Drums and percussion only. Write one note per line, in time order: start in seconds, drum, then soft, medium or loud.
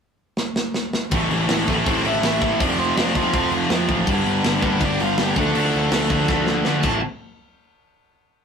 0.37 snare medium
0.56 snare medium
0.74 snare medium
0.93 snare medium
1.11 kick loud
1.11 crash medium
1.31 crash medium
1.49 snare loud
1.49 crash medium
1.68 kick medium
1.68 crash medium
1.86 kick loud
1.86 crash medium
2.05 crash medium
2.23 snare loud
2.23 crash medium
2.41 kick medium
2.41 crash medium
2.60 kick loud
2.60 crash loud
2.79 crash medium
2.97 snare loud
2.97 crash medium
3.15 kick medium
3.15 crash medium
3.34 kick loud
3.34 crash medium
3.52 crash medium
3.70 snare loud
3.70 crash medium
3.89 kick medium
3.89 crash medium
4.07 kick loud
4.07 crash medium
4.26 crash medium
4.44 snare loud
4.44 crash medium
4.62 kick medium
4.62 crash medium
4.80 kick loud
4.80 crash medium
5.00 crash medium
5.18 snare loud
5.18 crash medium
5.36 kick loud
5.36 crash medium
5.55 crash medium
5.73 crash medium
5.92 snare loud
5.92 crash loud
6.10 kick medium
6.10 crash medium
6.28 kick loud
6.28 snare medium
6.46 snare medium
6.65 snare loud
6.83 kick loud
6.83 crash medium